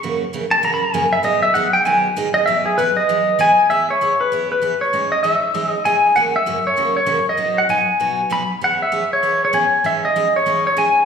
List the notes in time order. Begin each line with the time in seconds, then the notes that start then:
0.03 F#2 C#3 E3 A#3 C#4 F#4
0.33 F#2 C#3 E3 A#3 C#4 F#4
0.51 A5
0.63 F#2 C#3 E3 A#3 C#4 F#4 A#5
0.74 B5
0.85 A#5
0.94 F#2 C#3 E3 A#3 C#4 F#4 G#5
1.13 E5
1.23 B2 D#3 F#3 B3 D#4 G#4 D#5
1.43 E5
1.54 B2 D#3 F#3 B3 D#4 G#4 F#5
1.73 G5
1.85 B2 D#3 F#3 B3 D#4 G#4 G#5
2.16 B2 D#3 F#3 B3 D#4 G#4
2.34 D#5
2.46 E3 F#3 B3 E4 G#4 E5
2.66 G#4
2.78 E3 F#3 B3 E4 G#4 B4
2.97 D#5
3.09 E3 F#3 B3 E4 G#4
3.39 E3 F#3 B3 E4 G#4 G#5
3.70 E3 B3 E4 G#4 E5
3.90 C#5
4.01 E3 B3 E4 G#4
4.21 B4
4.32 E3 B3 E4 G#4
4.52 B4
4.62 E3 B3 E4 G#4
4.81 C#5
4.93 E3 G#3 C#4 D#4 G#4
5.12 D#5
5.23 E3 G#3 C#4 D#4 G#4 E5
5.54 E3 G#3 C#4 D#4 G#4
5.68 D#5
5.85 E3 G#3 C#4 D#4 G#4 G#5
6.15 F#2 C#3 E3 A#3 C#4 F#4 F#5
6.36 E5
6.46 F#2 C#3 E3 A#3 C#4 F#4
6.67 C#5
6.76 F#2 C#3 E3 A#3 C#4 F#4
6.97 C#5
7.06 F#2 C#3 E3 A#3 C#4 F#4
7.29 D#5
7.37 B2 F#3 B3 D#4 F#4
7.58 F#5
7.69 B2 F#3 B3 D#4 F#4 G#5
8.00 B2 F#3 B3 D#4 F#4
8.30 B2 F#3 B3 D#4 F#4 B5
8.61 E3 B3 C#4 G#4 F#5
8.82 E5
8.92 E3 B3 C#4 G#4
9.13 C#5
9.23 E3 B3 C#4 G#4
9.45 C#5
9.53 E3 B3 C#4 G#4 G#5
9.84 E3 G#3 C#4 D#4 G#4 E5
10.05 D#5
10.16 E3 G#3 C#4 D#4 G#4
10.36 C#5
10.46 E3 G#3 C#4 D#4 G#4
10.67 C#5
10.77 E3 G#3 C#4 D#4 G#4 G#5